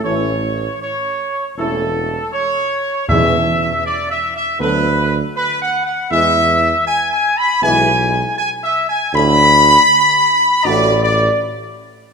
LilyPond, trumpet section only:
\new Staff \with { instrumentName = "Trumpet section" } { \time 4/4 \key e \mixolydian \tempo 4 = 79 cis''4 cis''4 a'4 cis''4 | e''4 \tuplet 3/2 { d''8 e''8 e''8 } b'4 \tuplet 3/2 { b'8 fis''8 fis''8 } | e''4 \tuplet 3/2 { gis''8 gis''8 b''8 } gis''4 \tuplet 3/2 { gis''8 e''8 gis''8 } | b''2 d''8 d''8 r4 | }